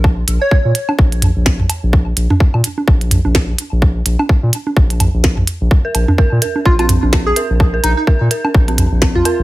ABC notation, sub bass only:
X:1
M:4/4
L:1/16
Q:"Swing 16ths" 1/4=127
K:Bbm
V:1 name="Sub bass" clef=bass
B,,,2 B,,, z2 B,, z2 B,,,3 B,,,3 z B,,,- | B,,,2 B,,, z2 B,, z2 B,,,3 B,,,3 z B,,,- | B,,,2 B,,, z2 B,, z2 B,,,3 B,,,3 z B,,, | z2 B,,, z2 B,, z2 B,,,3 B,,,3 z B,,,- |
B,,,2 B,,, z2 B,, z2 B,,,3 B,,,3 z B,,, |]